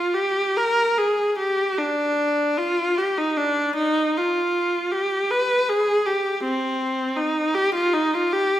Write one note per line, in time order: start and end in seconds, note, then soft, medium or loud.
0.00 0.13 F4 medium
0.14 0.55 G4 medium
0.57 0.97 A#4 medium
0.98 1.38 G#4 medium
1.38 1.77 G4 medium
1.79 2.58 D4 medium
2.58 2.97 F4 medium
2.98 3.17 G4 medium
3.18 3.36 D#4 medium
3.37 3.76 D4 medium
3.76 4.14 D#4 medium
4.17 4.92 F4 soft
4.91 5.29 G4 medium
5.31 5.68 B4 medium
5.69 6.06 G#4 medium
6.06 6.43 G4 medium
6.44 7.16 C4 medium
7.17 7.55 D#4 medium
7.54 7.74 G4 medium
7.75 7.93 F4 medium
7.93 8.13 D#4 medium
8.14 8.33 F4 medium
8.33 8.60 G4 medium